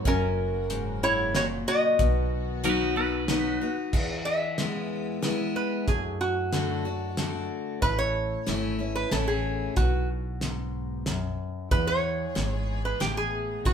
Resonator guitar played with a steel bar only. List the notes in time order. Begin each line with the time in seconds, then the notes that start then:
0.07 C#4 A#4
1.03 E4 C#5
1.36 F#4 C#5
1.68 F#4 D#5
4.25 E5
5.56 B4
5.88 G#4
6.21 F#4
7.82 B4
7.99 C#5
8.95 B4
9.12 A4
9.28 G#4
9.77 F#4
11.71 B4
11.87 C#5
12.85 B4
13.00 G4
13.17 G#4
13.66 F#4